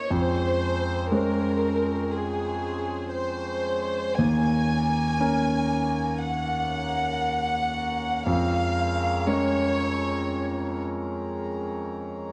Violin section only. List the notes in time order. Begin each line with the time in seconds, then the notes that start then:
Already playing: C#5
0.11 C5
1.12 A#4
2.13 G#4
3.14 C5
4.18 G#5
6.22 F#5
8.26 F5
9.28 C#5